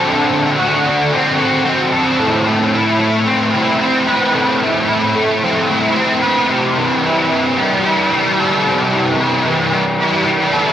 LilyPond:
\new Staff \with { instrumentName = "Distorted electric guitar" } { \time 4/4 \key a \dorian \tempo 4 = 112 <d c' fis' a'>8 d8 fis'8 d8 c'8 fis'8 c'8 a'8 | a,8 a8 e'8 a8 c'8 e'8 c'8 b'8 | a,8 a8 e'8 a8 c'8 e'8 c'8 b'8 | c8 e8 e'8 e8 g8 e'8 g8 a'8 |
c8 e8 e'8 e8 g8 e'8 g8 a'8 | }